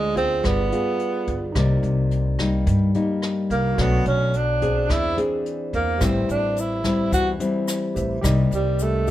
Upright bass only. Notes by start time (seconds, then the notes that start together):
Already playing: D2
0.44 G1
1.28 G1
1.55 C2
1.83 C2
2.67 G2
3.50 C2
3.78 B1
4.06 B1
4.89 E2
5.73 E2
6.01 A1
6.29 A1
7.13 E2
7.96 A1
8.24 C2
8.51 C2